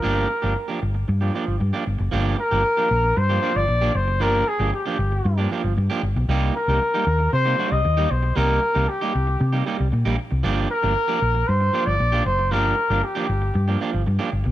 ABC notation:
X:1
M:4/4
L:1/16
Q:1/4=116
K:Gphr
V:1 name="Flugelhorn"
B6 z8 z2 | z2 B6 c3 d3 c2 | B2 A2 G6 z6 | z2 B6 c3 e3 c2 |
B4 G6 z6 | z2 B6 c3 d3 c2 | B4 G6 z6 |]
V:2 name="Clean electric guitar"
[F,B,DG]2 z [F,B,DG] z [F,B,DG]2 z2 [F,B,DG] [F,B,DG]2 z [F,B,DG]2 z | [F,B,DG]2 z [F,B,DG] z [F,B,DG]2 z2 [F,B,DG] [F,B,DG]2 z [F,B,DG]2 z | [F,B,DG]2 z [F,B,DG] z [F,B,DG]2 z2 [F,B,DG] [F,B,DG]2 z [F,B,DG]2 z | [G,B,EG]2 z [G,B,EG] z [G,B,EG]2 z2 [G,B,EG] [G,B,EG]2 z [G,B,EG]2 z |
[G,B,EG]2 z [G,B,EG] z [G,B,EG]2 z2 [G,B,EG] [G,B,EG]2 z [G,B,EG]2 z | [F,B,DG]2 z [F,B,DG] z [F,B,DG]2 z3 [F,B,DG]2 z [F,B,DG]2 z | [F,B,DG]2 z [F,B,DG] z [F,B,DG]2 z2 [F,B,DG] [F,B,DG]2 z [F,B,DG]2 z |]
V:3 name="Fingered electric bass" clef=bass
G,,,2 z G,,, z2 G,,,2 G,,2 z G,,, G,, z G,,, ^F,,, | G,,,2 z G,,, z2 B,,,2 G,,2 z G,,, B,,,2 ^F,,,2 | G,,,2 z G,,, z2 G,,,2 G,,2 z G,,, G,, z G,,, =B,,, | C,,2 z C,, z2 E,,2 C,2 z C,, E,,2 =B,,,2 |
C,,2 z C,, z2 C,,2 C,2 z C,, B,, B,,, z C,, | G,,,2 z G,,, z2 B,,,2 G,,2 z G,,, B,,,2 ^F,,,2 | G,,,2 z G,,, z2 G,,,2 G,,2 z G,,, G,, z G,,, =B,,, |]